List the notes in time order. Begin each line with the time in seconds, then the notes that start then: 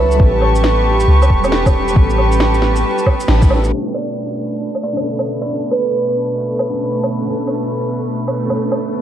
Already playing: C#2 F#3 C#4 E4 F#4 A4 B4 E5 A5 B5
0.11 G3, shaker
0.18 A1 B3 C#4 G4 B4 C#6, kick
0.23 A4
0.41 low woodblock
0.56 shaker
0.64 snare
1.00 shaker
1.08 C#2
1.22 low woodblock, shaker
1.30 E1, kick
1.40 G3 B3
1.44 C#4 A4, low woodblock, shaker
1.52 snare
1.66 kick, low woodblock, shaker
1.88 G3, shaker
1.95 A1 B3 C#4, kick
2.00 A4
2.10 shaker
2.18 low woodblock
2.32 shaker
2.40 snare
2.54 shaker
2.62 snare
2.76 shaker
2.98 shaker
3.06 kick, low woodblock
3.20 shaker
3.28 A1, snare
3.42 kick, shaker
3.48 G3 B3 C#4, low woodblock
3.52 A4
3.64 shaker
3.69 B2 D3 A3 B3 A4 B4
3.74 C#4 A4
3.94 D5, low woodblock
4.75 low woodblock
4.83 D5
4.92 D3 B3
4.97 C#3 A4, low woodblock
5.19 low woodblock
5.42 D3 D5
5.48 B3 C#4
5.53 A4
5.71 B4, low woodblock
6.59 low woodblock
6.69 D3 B3
6.75 C#4 A4
7.03 low woodblock
7.21 D3 B3
7.27 C#4 A4
7.47 low woodblock
8.28 low woodblock
8.46 D3 B3
8.50 C#4 A4, low woodblock
8.72 low woodblock
8.98 D3